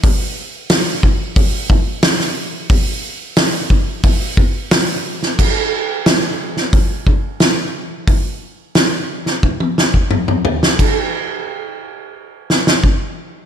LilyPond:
\new DrumStaff \with { instrumentName = "Drums" } \drummode { \time 4/4 \tempo 4 = 89 <hho bd>4 <hho sn>8 bd8 <hho bd>8 bd8 <hho sn>16 sn8. | <hho bd>4 <hho sn>8 bd8 <hho bd>8 bd8 <hho sn>8. sn16 | <cymc bd>4 <hho sn>8. sn16 <hho bd>8 bd8 <hho sn>4 | <hho bd>4 <hho sn>8. sn16 bd16 tommh16 sn16 bd16 toml16 toml16 tomfh16 sn16 |
<cymc bd>4 r4 r8 sn16 sn16 bd4 | }